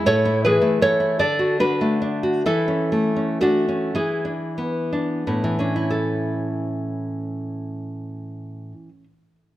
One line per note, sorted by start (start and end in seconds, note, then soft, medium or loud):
0.06 0.61 A2 medium
0.06 0.40 A4 medium
0.06 0.41 C#5 loud
0.25 0.99 E4 medium
0.45 0.80 E3 medium
0.45 0.78 G#4 medium
0.45 0.79 B4 medium
0.62 1.19 A3 medium
0.82 1.19 E3 medium
0.82 1.17 A4 medium
0.82 1.18 C#5 loud
1.00 1.19 E4 medium
1.19 2.43 D3 medium
1.19 1.58 A4 medium
1.19 1.58 D5 medium
1.39 1.59 F#4 medium
1.60 2.00 D4 soft
1.60 2.22 F#4 medium
1.60 2.43 B4 medium
1.81 2.45 A3 soft
2.02 2.46 D4 medium
2.23 2.46 F#4 medium
2.46 3.94 E3 medium
2.46 3.39 E4 soft
2.46 3.39 A4 medium
2.68 3.15 C#4 medium
2.92 3.40 A3 soft
3.16 3.42 C#4 soft
3.41 3.97 A3 soft
3.41 3.68 D4 medium
3.41 3.95 F#4 medium
3.69 3.97 C#4 soft
3.95 5.43 E3 medium
3.95 5.75 E4 soft
3.95 5.87 G#4 medium
4.25 4.91 D4 soft
4.58 5.26 B3 soft
4.93 5.59 D4 soft
5.27 8.72 A2 soft
5.27 5.58 B3 soft
5.44 8.88 E3 soft
5.59 9.03 C#4 soft
5.59 5.92 D4 soft
5.76 9.20 E4 soft
5.91 9.35 A4 medium